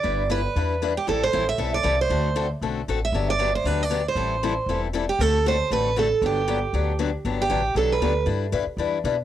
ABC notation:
X:1
M:4/4
L:1/8
Q:"Swing" 1/4=233
K:G
V:1 name="Steel-string acoustic guitar"
d2 B4- B G | A c2 e2 d2 c- | c3 z4 e- | e d2 c B d2 c- |
c4- c z2 G | A2 c2 B2 A2 | G6 z2 | z G3 A B3 |
z8 |]
V:2 name="Steel-string acoustic guitar"
[G,DEB] z [G,DEB] z [G,DEB] z [G,DEB] z | [E,G,CEA] z [E,G,CEA] z [E,G,CEA] z [E,G,CEA] z | [D,A,CFA] z [D,A,CFA] z [D,A,CFA] z [D,A,CFA] z | [D,F,B,DG] z [D,F,B,DG] z [D,F,B,DG] z [D,F,B,DG] z |
[E,G,CEA] z [E,G,CEA] z [E,G,CEA] z [E,G,CEA] z | [D,A,CFA] z [D,A,CFA] z [D,A,CFA] z [D,A,CFA] z | [D,F,B,DG] z [D,F,B,DG] z [D,F,B,DG] z [D,F,B,DG] z | [D,F,B,DG] z [D,F,B,DG] z [D,F,B,DG] z [D,F,B,DG] z |
[G,DEB] z [G,DEB] z [G,DEB] z [G,DEB] z |]
V:3 name="Upright bass" clef=bass
G,,,4 E,,4 | A,,,2 A,,,2 B,,,2 C,,2 | D,,4 B,,,2 A,,,2 | G,,,4 D,,4 |
A,,,4 E,,,4 | D,,4 A,,,4 | G,,,4 D,,4 | G,,,2 A,,,2 B,,,2 D,,2 |
G,,2 F,, z E,,2 B,,2 |]